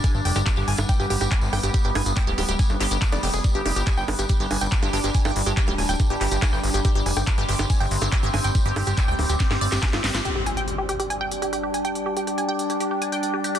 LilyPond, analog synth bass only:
\new Staff \with { instrumentName = "Analog synth bass" } { \clef bass \time 4/4 \key g \major \tempo 4 = 141 r16 g,,16 f,,16 g,,16 r16 g,,16 g,,16 g,,16 r16 g,,16 g,,16 g,,16 r16 g,,16 g,,16 g,,16 | r16 g,,16 g,,16 g,,16 r16 d,,16 d,,16 d,,16 r16 g,,16 g,,16 g,,16 r16 f,,16 f,,16 f,,16 | r16 g,,16 f,,16 g,,16 r16 g,,16 g,,16 g,,16 r16 g,,16 g,,16 g,,16 r16 g,,16 g,,16 g,,16 | r16 g,,16 g,,16 g,,16 r16 d,,16 d,,16 d,,16 r16 g,,16 g,,16 g,,16 r16 g,,16 g,,16 g,,16 |
r16 g,,16 f,,16 g,,16 r16 g,,16 g,,16 g,,16 r16 g,,16 g,,16 g,,16 r16 g,,16 g,,16 g,,16 | r16 g,,16 g,,16 g,,16 r16 d,,16 d,,16 d,,16 r16 g,,16 g,,16 g,,16 r16 g,,16 g,,16 g,,16 | r1 | r1 | }